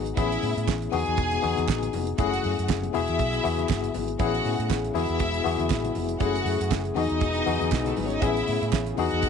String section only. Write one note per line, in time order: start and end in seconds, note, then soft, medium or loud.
0.16 0.66 E4 loud
0.16 0.66 E5 loud
0.92 1.91 G#4 loud
0.92 1.91 G#5 loud
2.18 2.68 F#4 medium
2.18 2.67 F#5 loud
2.94 3.93 E4 loud
2.94 3.93 E5 loud
4.20 4.69 F#4 medium
4.20 4.69 F#5 loud
4.95 5.94 E4 loud
4.95 5.94 E5 loud
6.20 6.70 F#4 medium
6.20 6.70 F#5 loud
6.96 7.83 D#4 loud
6.96 7.83 D#5 loud
7.88 7.97 A3 medium
7.88 7.97 A4 medium
7.97 8.06 B3 medium
7.97 8.05 B4 medium
8.06 8.14 C#4 medium
8.06 8.14 C#5 medium
8.13 8.22 D#4 medium
8.13 8.22 D#5 loud
8.23 8.72 E4 medium
8.23 8.72 E5 loud
8.98 9.29 F#4 loud
8.98 9.29 F#5 loud